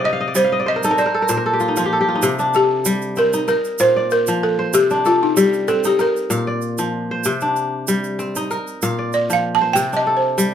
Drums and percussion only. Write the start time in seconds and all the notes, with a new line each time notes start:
0.35 shaker
0.83 shaker
0.98 shaker
1.28 shaker
1.60 shaker
1.76 shaker
2.22 shaker
2.39 shaker
2.54 shaker
2.85 shaker
3.02 shaker
3.16 shaker
3.33 shaker
3.48 shaker
3.65 shaker
3.79 shaker
4.11 shaker
4.27 shaker
4.73 shaker
4.90 shaker
5.05 shaker
5.37 shaker
5.53 shaker
5.68 shaker
5.84 shaker
5.99 shaker
6.17 shaker
6.31 shaker
6.62 shaker
6.78 shaker
7.24 shaker
7.41 shaker
7.56 shaker
7.88 shaker
8.04 shaker
8.19 shaker
8.35 shaker
8.51 shaker
8.67 shaker
8.82 shaker
9.13 shaker
9.30 shaker
9.76 shaker
9.93 shaker
10.38 shaker